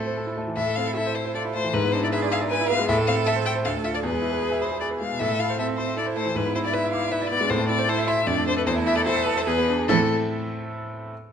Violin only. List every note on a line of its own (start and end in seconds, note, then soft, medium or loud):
0.00 0.37 A4 loud
0.56 0.77 E5 loud
0.76 0.95 F5 loud
0.96 1.17 E5 loud
1.15 1.34 C5 loud
1.35 1.43 D5 loud
1.54 1.75 C5 loud
1.74 1.94 B4 loud
1.93 2.02 C5 loud
2.04 2.08 D5 loud
2.12 2.20 E5 loud
2.32 2.39 F5 loud
2.51 2.69 G#5 loud
2.70 2.88 F5 loud
2.89 2.96 E5 loud
3.07 3.15 F5 loud
3.27 3.34 E5 loud
3.46 3.53 G5 loud
3.65 3.72 F5 loud
3.84 3.88 E5 loud
3.94 3.98 D5 loud
4.03 4.63 B4 loud
4.62 4.80 C5 loud
4.80 4.88 D5 loud
5.00 5.21 F5 loud
5.20 5.41 E5 loud
5.40 5.59 F5 loud
5.59 5.67 E5 loud
5.78 5.97 C5 loud
5.98 6.06 D5 loud
6.17 6.38 C5 loud
6.36 6.54 B4 loud
6.55 6.59 C5 loud
6.65 6.75 D5 loud
6.74 6.92 E5 loud
6.93 7.13 F5 loud
7.12 7.29 E5 loud
7.30 7.51 D5 loud
7.50 7.68 C5 loud
7.69 7.91 D5 loud
7.89 8.09 C5 loud
8.08 8.29 E5 loud
8.27 8.47 D5 loud
8.47 8.57 C5 loud
8.58 8.61 B4 loud
8.67 8.75 C5 loud
8.87 8.96 E5 loud
8.96 9.00 D5 loud
9.05 9.27 C5 loud
9.26 9.36 B4 loud
9.36 9.41 C5 loud
9.46 9.87 B4 loud
9.88 10.11 A4 loud